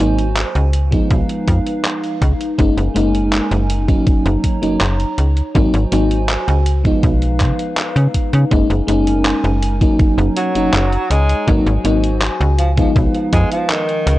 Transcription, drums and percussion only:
0.00 closed hi-hat medium
0.18 closed hi-hat soft
0.37 clap loud
0.37 closed hi-hat medium
0.55 closed hi-hat soft
0.73 closed hi-hat medium
0.92 kick loud
0.92 closed hi-hat soft
1.11 kick loud
1.11 closed hi-hat medium
1.29 closed hi-hat soft
1.48 kick medium
1.48 closed hi-hat medium
1.67 closed hi-hat soft
1.85 clap loud
1.85 closed hi-hat medium
2.04 closed hi-hat soft
2.22 kick medium
2.22 closed hi-hat medium
2.41 closed hi-hat soft
2.59 kick loud
2.59 closed hi-hat medium
2.78 closed hi-hat soft
2.96 closed hi-hat medium
3.15 closed hi-hat soft
3.33 clap loud
3.33 closed hi-hat medium
3.52 closed hi-hat soft
3.70 closed hi-hat medium
3.89 kick loud
3.89 closed hi-hat soft
4.07 kick loud
4.07 closed hi-hat medium
4.26 closed hi-hat soft
4.44 kick medium
4.44 closed hi-hat medium
4.63 closed hi-hat soft
4.81 clap loud
4.81 closed hi-hat medium
5.00 closed hi-hat soft
5.18 closed hi-hat medium
5.37 closed hi-hat soft
5.55 kick loud
5.55 closed hi-hat medium
5.74 closed hi-hat soft
5.92 closed hi-hat medium
6.11 closed hi-hat soft
6.29 clap loud
6.29 closed hi-hat medium
6.48 closed hi-hat soft
6.66 closed hi-hat loud
6.85 kick loud
6.85 closed hi-hat soft
7.03 kick loud
7.03 closed hi-hat medium
7.22 closed hi-hat soft
7.40 kick medium
7.40 clap medium
7.40 closed hi-hat medium
7.59 closed hi-hat soft
7.77 clap loud
7.77 closed hi-hat medium
7.96 closed hi-hat soft
8.14 kick medium
8.14 closed hi-hat medium
8.33 closed hi-hat soft
8.51 kick loud
8.51 closed hi-hat medium
8.70 closed hi-hat soft
8.88 closed hi-hat medium
9.07 closed hi-hat medium
9.25 clap loud
9.25 closed hi-hat medium
9.44 closed hi-hat soft
9.63 closed hi-hat loud
9.81 kick loud
9.81 closed hi-hat medium
9.99 kick loud
9.99 closed hi-hat medium
10.18 closed hi-hat soft
10.37 closed hi-hat loud
10.55 closed hi-hat medium
10.74 clap loud
10.74 closed hi-hat medium
10.92 closed hi-hat soft
11.11 closed hi-hat loud
11.29 closed hi-hat medium
11.48 kick loud
11.48 closed hi-hat medium
11.66 closed hi-hat soft
11.85 closed hi-hat loud
12.04 closed hi-hat medium
12.22 clap loud
12.22 closed hi-hat medium
12.41 closed hi-hat soft
12.59 closed hi-hat loud
12.77 kick loud
12.77 closed hi-hat medium
12.96 kick loud
12.96 closed hi-hat medium
13.15 closed hi-hat soft
13.33 kick medium
13.33 closed hi-hat loud
13.52 closed hi-hat medium
13.70 clap loud
13.70 closed hi-hat medium
13.89 closed hi-hat soft
14.07 closed hi-hat loud

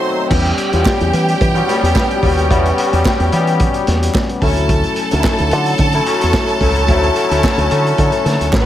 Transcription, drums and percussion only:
0.31 kick loud
0.31 crash loud
0.45 closed hi-hat soft
0.58 closed hi-hat medium
0.73 closed hi-hat soft
0.86 kick loud
0.86 snare loud
0.86 clap loud
1.00 closed hi-hat medium
1.13 closed hi-hat medium
1.28 closed hi-hat soft
1.41 kick loud
1.41 closed hi-hat medium
1.55 closed hi-hat soft
1.69 snare soft
1.69 closed hi-hat medium
1.84 closed hi-hat medium
1.95 kick loud
1.95 snare loud
1.95 clap medium
2.10 closed hi-hat soft
2.23 kick loud
2.23 open hi-hat medium
2.39 closed hi-hat medium
2.51 kick loud
2.51 closed hi-hat medium
2.65 closed hi-hat soft
2.78 closed hi-hat medium
2.93 closed hi-hat soft
3.05 kick loud
3.05 snare loud
3.05 clap loud
3.20 closed hi-hat soft
3.32 closed hi-hat medium
3.47 closed hi-hat soft
3.59 kick loud
3.59 closed hi-hat medium
3.74 closed hi-hat medium
3.87 snare soft
3.87 closed hi-hat medium
4.02 closed hi-hat medium
4.15 kick loud
4.15 snare loud
4.15 clap loud
4.29 closed hi-hat soft
4.42 kick loud
4.42 open hi-hat medium
4.56 closed hi-hat medium
4.69 kick loud
4.69 closed hi-hat medium
4.84 closed hi-hat soft
4.96 closed hi-hat medium
5.11 closed hi-hat medium
5.24 kick loud
5.24 snare loud
5.24 clap loud
5.38 closed hi-hat medium
5.51 closed hi-hat medium
5.66 closed hi-hat medium
5.78 kick loud
5.78 closed hi-hat medium
5.92 closed hi-hat soft
6.06 closed hi-hat medium
6.21 closed hi-hat medium
6.33 kick loud
6.33 snare loud
6.33 clap loud
6.48 closed hi-hat soft
6.60 kick loud
6.60 open hi-hat medium
6.75 closed hi-hat soft
6.88 kick loud
6.88 closed hi-hat medium
7.03 closed hi-hat soft
7.16 closed hi-hat medium
7.31 closed hi-hat medium
7.44 kick loud
7.44 snare loud
7.44 clap loud
7.58 closed hi-hat medium
7.71 closed hi-hat medium
7.86 closed hi-hat soft
7.98 kick loud
7.98 closed hi-hat medium
8.12 closed hi-hat medium
8.26 snare soft
8.26 closed hi-hat medium
8.41 closed hi-hat medium
8.53 kick loud
8.53 snare loud
8.53 clap loud

